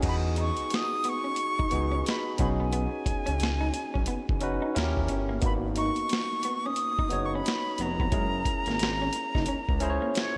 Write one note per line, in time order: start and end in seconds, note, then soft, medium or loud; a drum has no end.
0.03 0.52 E2 loud
0.03 1.26 B3 medium
0.03 1.27 D#4 medium
0.03 1.27 F#4 medium
0.03 1.27 G#4 medium
0.03 kick medium
0.03 closed hi-hat medium
0.03 crash medium
0.08 0.15 B5 loud
0.36 0.50 D#4 medium
0.36 closed hi-hat medium
0.41 0.76 C#6 medium
0.57 0.63 C#2 soft
0.57 closed hi-hat soft
0.70 muted clean electric guitar stroke soft
0.70 snare loud
0.70 closed hi-hat medium
0.75 1.11 D#6 loud
1.04 1.17 B3 medium
1.04 closed hi-hat medium
1.09 2.08 C#6 loud
1.24 1.32 C#4 medium
1.36 closed hi-hat medium
1.59 1.65 C#2 soft
1.59 1.67 D#4 medium
1.59 kick medium
1.71 2.02 C#2 medium
1.71 2.39 B3 medium
1.71 2.38 D#4 medium
1.71 2.39 F#4 medium
1.71 2.40 G#4 medium
1.71 muted clean electric guitar stroke soft
1.71 closed hi-hat medium
1.92 2.00 C#4 medium
2.05 2.39 B5 medium
2.05 muted clean electric guitar stroke soft
2.05 snare medium
2.05 closed hi-hat medium
2.38 2.88 B1 loud
2.38 2.52 B3 medium
2.38 3.62 C#4 medium
2.38 3.62 D#4 medium
2.38 3.63 F#4 medium
2.38 3.63 G#4 medium
2.38 kick medium
2.38 closed hi-hat medium
2.43 2.49 B5 medium
2.60 2.68 B3 medium
2.60 4.59 G#5 medium
2.73 2.85 B3 medium
2.73 closed hi-hat medium
3.06 3.15 C#2 soft
3.06 muted clean electric guitar stroke soft
3.06 kick medium
3.06 closed hi-hat medium
3.26 3.40 C#2 medium
3.26 3.35 C#4 medium
3.26 closed hi-hat soft
3.40 3.71 C#2 medium
3.40 snare loud
3.40 closed hi-hat medium
3.61 3.69 D#4 medium
3.73 muted clean electric guitar stroke soft
3.73 closed hi-hat medium
3.94 4.07 B1 medium
3.94 4.02 C#4 medium
3.94 kick medium
4.06 4.17 F#1 soft
4.06 4.20 B3 medium
4.06 closed hi-hat medium
4.29 4.59 F#1 medium
4.29 kick medium
4.41 4.73 C#4 medium
4.41 4.76 D#4 medium
4.41 4.75 F#4 medium
4.41 4.76 B4 medium
4.41 muted clean electric guitar stroke soft
4.41 closed hi-hat medium
4.62 4.70 D#4 medium
4.75 4.94 D#2 loud
4.75 5.36 C#4 medium
4.75 5.37 E4 medium
4.75 4.84 F#4 medium
4.75 5.38 A#4 medium
4.75 muted clean electric guitar stroke soft
4.75 snare loud
4.75 closed hi-hat medium
4.83 5.40 G4 medium
4.97 5.09 D#2 medium
4.97 kick medium
5.08 5.39 G1 medium
5.08 5.21 C#4 medium
5.08 closed hi-hat medium
5.29 5.37 A#3 medium
5.41 5.91 G#1 loud
5.41 6.66 A#3 medium
5.41 6.65 B3 medium
5.41 6.65 D#4 medium
5.41 6.65 F#4 medium
5.41 kick loud
5.41 closed hi-hat medium
5.46 5.53 B5 medium
5.76 5.89 D#4 medium
5.76 6.68 C#6 medium
5.76 closed hi-hat medium
5.96 6.03 F#1 soft
5.96 closed hi-hat soft
6.09 muted clean electric guitar stroke soft
6.09 snare loud
6.09 closed hi-hat medium
6.43 6.57 B3 medium
6.43 closed hi-hat medium
6.66 6.74 C#4 medium
6.66 7.27 D#6 loud
6.76 closed hi-hat medium
6.99 7.07 D#4 medium
6.99 kick medium
7.09 7.42 F#1 medium
7.09 8.02 B3 medium
7.09 8.03 D#4 medium
7.09 8.03 F#4 medium
7.09 8.04 C#5 medium
7.09 muted clean electric guitar stroke soft
7.09 closed hi-hat medium
7.26 7.36 C#6 medium
7.34 7.42 C#4 medium
7.34 7.83 B5 medium
7.46 muted clean electric guitar stroke soft
7.46 snare loud
7.46 closed hi-hat medium
7.78 8.09 F1 loud
7.78 7.92 B3 medium
7.78 9.95 A#5 loud
7.78 closed hi-hat medium
8.00 8.08 B3 medium
8.00 kick medium
8.11 8.43 F#1 loud
8.11 8.25 G#3 medium
8.11 9.35 C#4 medium
8.11 9.35 E4 medium
8.11 9.35 G#4 medium
8.11 9.36 A#4 medium
8.11 kick loud
8.11 closed hi-hat medium
8.45 muted clean electric guitar stroke soft
8.45 kick medium
8.45 closed hi-hat medium
8.66 8.79 G#1 medium
8.66 8.75 A#3 medium
8.66 snare soft
8.66 closed hi-hat soft
8.79 9.10 G#1 medium
8.79 snare loud
8.79 closed hi-hat medium
9.02 9.09 C#4 medium
9.13 muted clean electric guitar stroke soft
9.13 closed hi-hat medium
9.35 9.47 F#1 medium
9.35 9.43 D#4 medium
9.35 kick medium
9.35 snare soft
9.46 9.56 C#2 medium
9.46 9.60 C#4 medium
9.46 closed hi-hat medium
9.69 9.99 C#2 medium
9.69 kick medium
9.80 10.37 C#4 medium
9.80 10.37 E4 medium
9.80 10.37 G#4 medium
9.80 9.90 C5 medium
9.80 muted clean electric guitar stroke soft
9.80 closed hi-hat medium
9.90 10.37 C#5 loud
10.02 10.10 A#3 medium
10.15 10.37 C#5 medium
10.15 muted clean electric guitar stroke soft
10.15 snare loud
10.15 closed hi-hat medium